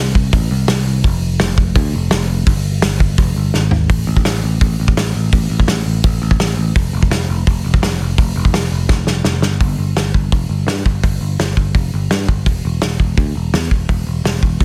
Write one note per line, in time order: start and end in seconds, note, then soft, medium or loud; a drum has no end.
0.00 0.32 C2 medium
0.15 kick medium
0.32 0.50 A1 medium
0.32 kick loud
0.32 open hi-hat medium
0.51 0.68 C2 medium
0.68 1.03 C2 loud
0.68 snare loud
0.68 open hi-hat medium
1.04 1.38 F1 loud
1.04 kick loud
1.04 open hi-hat medium
1.40 1.74 F1 medium
1.40 snare loud
1.40 open hi-hat medium
1.58 kick medium
1.75 1.93 D2 loud
1.75 kick loud
1.75 open hi-hat medium
1.94 2.11 F1 medium
2.11 2.46 F1 loud
2.11 snare loud
2.11 open hi-hat medium
2.47 2.81 G1 medium
2.47 kick loud
2.47 open hi-hat medium
2.82 3.17 G1 medium
2.82 snare loud
2.82 open hi-hat medium
3.00 kick medium
3.18 3.36 F1 medium
3.18 kick loud
3.18 open hi-hat medium
3.36 3.53 G1 medium
3.54 3.90 G#1 medium
3.54 snare medium
3.71 floor tom medium
3.89 4.04 A1 medium
3.89 kick loud
3.89 open hi-hat medium
4.07 4.22 A1 medium
4.17 kick medium
4.25 4.40 A1 medium
4.25 snare loud
4.25 open hi-hat medium
4.44 4.58 A1 medium
4.61 4.76 A1 medium
4.61 kick loud
4.61 open hi-hat medium
4.80 4.94 A1 medium
4.88 kick medium
4.97 5.12 A1 medium
4.97 snare loud
4.97 open hi-hat medium
5.15 5.29 A1 medium
5.32 5.47 A1 loud
5.32 kick loud
5.32 open hi-hat medium
5.50 5.64 A1 medium
5.60 kick medium
5.68 5.82 A1 medium
5.68 snare loud
5.68 open hi-hat medium
5.86 6.00 A1 medium
6.04 6.18 A1 medium
6.04 kick loud
6.04 open hi-hat medium
6.22 6.36 A1 medium
6.31 kick medium
6.40 6.54 A1 medium
6.40 snare loud
6.40 open hi-hat medium
6.57 6.72 A1 medium
6.76 kick loud
6.76 open hi-hat medium
6.93 7.07 F1 loud
7.03 kick medium
7.10 7.25 F1 medium
7.10 snare loud
7.10 open hi-hat medium
7.29 7.43 F1 medium
7.47 7.61 F1 medium
7.47 kick loud
7.47 open hi-hat medium
7.64 7.79 F1 medium
7.74 kick medium
7.82 7.96 F1 loud
7.82 snare loud
7.82 open hi-hat medium
8.00 8.14 F1 medium
8.18 8.32 F1 loud
8.18 kick loud
8.18 open hi-hat medium
8.36 8.50 F1 loud
8.45 kick medium
8.53 8.68 F1 medium
8.53 snare loud
8.53 open hi-hat medium
8.72 8.86 F1 medium
8.89 9.04 F1 medium
8.89 kick loud
8.89 snare medium
9.07 9.22 F1 medium
9.07 snare medium
9.24 9.43 F1 loud
9.24 snare loud
9.42 9.60 G1 medium
9.42 snare medium
9.60 9.75 G1 medium
9.60 kick loud
9.60 open hi-hat soft
9.78 9.93 G1 medium
9.96 10.11 G1 medium
9.96 snare loud
9.96 open hi-hat soft
10.14 10.29 G1 medium
10.14 kick medium
10.32 10.47 F1 medium
10.32 kick loud
10.32 open hi-hat soft
10.49 10.64 G1 medium
10.67 10.82 G2 medium
10.67 snare loud
10.67 open hi-hat soft
10.85 11.00 G1 medium
10.85 kick medium
11.04 11.18 G1 medium
11.04 kick loud
11.04 open hi-hat medium
11.21 11.36 G1 medium
11.39 11.54 G1 medium
11.39 snare loud
11.39 open hi-hat medium
11.57 11.71 G1 medium
11.57 kick medium
11.75 11.89 F1 medium
11.75 kick loud
11.75 open hi-hat soft
11.94 12.08 G1 medium
12.11 12.26 G2 medium
12.11 snare loud
12.11 open hi-hat soft
12.28 12.46 G1 medium
12.28 kick medium
12.46 12.61 E1 medium
12.46 kick loud
12.46 open hi-hat medium
12.65 12.79 E1 medium
12.82 12.97 E1 medium
12.82 snare loud
12.82 open hi-hat soft
13.00 13.15 E1 medium
13.00 kick medium
13.17 13.32 D2 medium
13.17 kick loud
13.17 open hi-hat soft
13.35 13.50 E1 medium
13.54 13.68 E2 loud
13.54 snare loud
13.54 open hi-hat soft
13.71 kick medium
13.89 14.04 E1 medium
13.89 kick loud
13.89 open hi-hat soft
14.07 14.21 E1 medium
14.24 14.39 E1 medium
14.24 snare loud
14.24 open hi-hat medium
14.43 14.57 E1 medium
14.43 kick medium
14.60 14.65 D2 medium
14.60 kick loud
14.60 open hi-hat medium